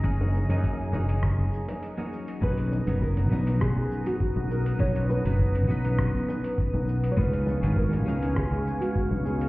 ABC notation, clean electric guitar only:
X:1
M:4/4
L:1/16
Q:"Swing 16ths" 1/4=101
K:Blyd
V:1 name="Clean electric guitar"
[F,A,CDG]3 [F,A,CDG]3 [F,A,CDG]6- [F,A,CDG] [F,A,CDF]3 | [F,B,CDB]3 [F,B,CDA]3 [F,B,CDA]8- [F,B,CDA]2 | [F,B,CDA]3 [F,B,CDB]3 [F,B,CDB]8- [F,B,CDB]2 | [G,B,CDE]3 [G,B,CDE]3 [G,B,CDe]8- [G,B,CDe]2 |]